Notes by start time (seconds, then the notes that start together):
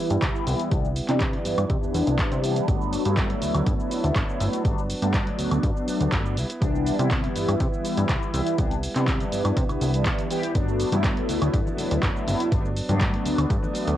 Already playing: E3 G3 B3 E4
0.00 B3 E4
0.10 G2, closed hi-hat, shaker
0.21 C2 G3, kick, clap, closed hi-hat, high woodblock, shaker
0.36 shaker
0.45 C2 G3 B3 E4, open hi-hat, shaker
0.58 B3 E4, closed hi-hat, shaker
0.70 C2 E3 G3 B3 D4 E4, kick, closed hi-hat, shaker
0.85 shaker
0.96 open hi-hat, shaker
1.08 C3 E3 G3 B3 D4, clap, closed hi-hat, shaker
1.19 G3 B3, kick, clap, closed hi-hat, shaker
1.32 B3 E4, closed hi-hat
1.44 G2 G3 B3 E4, open hi-hat, shaker
1.57 G2 B3 E4, closed hi-hat, high woodblock, shaker
1.70 C3, kick, closed hi-hat, shaker
1.81 E2 B3 E4, shaker
1.93 E2 G3 B3 E4, open hi-hat, shaker
2.06 C2 B3 E4, closed hi-hat, shaker
2.18 G3 B3, kick, clap, closed hi-hat, shaker
2.32 C3, closed hi-hat, shaker
2.42 G3 B3 E4, open hi-hat, shaker
2.55 B3 E4, closed hi-hat, shaker
2.67 G1 F#3 A3 B3 D4, kick, closed hi-hat, shaker
2.82 shaker
2.93 open hi-hat, shaker
3.05 G2 F#3 A3 B3 E4, closed hi-hat, shaker
3.16 F#3 B3 D4, kick, clap, closed hi-hat, shaker
3.29 B3 D4, closed hi-hat
3.40 D2 F#3 B3 D4, open hi-hat, shaker
3.55 D2, closed hi-hat, high woodblock, shaker
3.67 G2, kick, closed hi-hat, shaker
3.78 B3 D4, shaker
3.90 F#3 B3 D4, open hi-hat, shaker
4.03 D2 B3 D4, closed hi-hat, shaker
4.15 G1 F#3 B3 D4, kick, clap, closed hi-hat, high woodblock, shaker
4.29 shaker
4.39 G1 F#3 B3 D4, open hi-hat, shaker
4.52 B3 D4, closed hi-hat, shaker
4.64 G1 F#3 A3 B3 D4, kick, closed hi-hat, shaker
4.78 shaker
4.90 open hi-hat, shaker
5.01 G2 F#3 A3 B3 D4, closed hi-hat, shaker
5.13 F#3 B3 D4, kick, clap, closed hi-hat, shaker
5.25 B3 D4, closed hi-hat
5.37 D2 F#3 B3 D4, open hi-hat, shaker
5.50 D2 B3 D4, closed hi-hat, high woodblock, shaker
5.63 G2, kick, closed hi-hat, shaker
5.75 B3 D4, shaker
5.87 F#3 B3 D4, open hi-hat, shaker
5.99 D2 B3 D4, closed hi-hat, shaker
6.12 G1 F#3 B3 D4, kick, clap, closed hi-hat, shaker
6.26 shaker
6.36 C2 G3 B3 E4, open hi-hat, shaker
6.49 B3 E4, closed hi-hat, shaker
6.61 C2 E3 G3 B3 D4 E4, kick, closed hi-hat, shaker
6.75 shaker
6.86 open hi-hat, shaker
6.98 C3 E3 G3 B3 E4, closed hi-hat, shaker
7.11 B3 E4, kick, clap, closed hi-hat, shaker
7.23 B3 E4, closed hi-hat
7.35 G2 G3 B3 E4, open hi-hat, shaker
7.47 G2 B3 E4, closed hi-hat, high woodblock, shaker
7.60 C3, kick, closed hi-hat, shaker
7.72 B3 E4, shaker
7.84 G3 B3 E4, open hi-hat, shaker
7.96 G2 B3 E4, closed hi-hat, shaker
8.09 C2 G3 E4, kick, clap, closed hi-hat, high woodblock, shaker
8.23 shaker
8.33 C2 G3 B3 E4, open hi-hat, shaker
8.46 B3 E4, closed hi-hat, shaker
8.58 C2 E3 G3 B3 D4 E4, kick, closed hi-hat, shaker
8.71 closed hi-hat, shaker
8.83 open hi-hat, shaker
8.94 C3 E3 G3 B3 D4, clap, closed hi-hat, shaker
9.07 G3 E4, kick, clap, closed hi-hat, shaker
9.19 B3 E4, closed hi-hat, shaker
9.31 G2 G3 B3 E4, open hi-hat, shaker
9.44 G2 B3 E4, closed hi-hat, high woodblock, shaker
9.57 C3, kick, closed hi-hat, shaker
9.69 C2 B3 E4, closed hi-hat, high woodblock, shaker
9.80 C2 G3 B3 E4, open hi-hat, shaker
9.93 E3 G3 B3 D4, closed hi-hat, shaker
10.05 G3 B3 E4, kick, clap, closed hi-hat, shaker
10.19 closed hi-hat, shaker
10.30 E3 G3 B3 E4 G4, open hi-hat, shaker
10.42 B3 E4, closed hi-hat, shaker
10.54 G1 F#3 A3 B3 D4, kick, closed hi-hat, shaker
10.68 tambourine, shaker
10.79 open hi-hat, tambourine, shaker
10.91 G2 F#3 A3 B3 E4, closed hi-hat, tambourine, high conga, low conga, shaker
11.03 F#3 B3 D4, kick, clap, closed hi-hat, shaker
11.16 B3 D4, closed hi-hat
11.28 D2 F#3 B3 D4, open hi-hat, tambourine, shaker
11.40 D2 B3 D4, closed hi-hat, tambourine, high woodblock, shaker
11.53 G2, kick, closed hi-hat, shaker
11.65 B3 D4, high conga, shaker
11.77 F#3 B3 D4, open hi-hat, tambourine, low conga, shaker
11.90 D2 B3 D4, closed hi-hat, shaker
12.02 G1 F#3 B3 D4, kick, clap, closed hi-hat, high woodblock, shaker
12.15 tambourine, shaker
12.26 G1 F#3 B3 D4, open hi-hat, tambourine, low conga, shaker
12.39 B3 D4, closed hi-hat, shaker
12.51 G1 F#3 A3 B3 D4, kick, closed hi-hat, shaker
12.65 tambourine, shaker
12.76 open hi-hat, tambourine, shaker
12.88 G2 F#3 A3 B3 D4, closed hi-hat, tambourine, high conga, low conga, shaker
13.00 F#3 B3 D4, kick, clap, closed hi-hat, shaker
13.13 B3 D4, closed hi-hat
13.24 D2 F#3 B3 D4, open hi-hat, tambourine, shaker
13.37 D2 B3 D4, closed hi-hat, high woodblock, shaker
13.50 G2, kick, closed hi-hat, shaker
13.62 B3 D4, high conga, shaker
13.74 F#3 B3 D4, open hi-hat, tambourine, shaker
13.87 D2, closed hi-hat, shaker